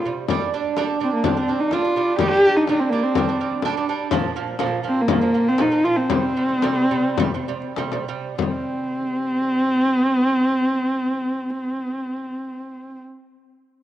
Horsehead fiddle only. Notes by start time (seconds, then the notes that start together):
1.03 C4
1.14 A#3
1.25 C4
1.60 D#4
1.73 F4
2.19 G4
2.56 D#4
2.69 D#4
2.80 C4
2.89 A#3
3.03 C4
4.88 C4
5.01 A#3
5.48 C4
5.61 D#4
5.84 F4
5.96 C4
8.39 C4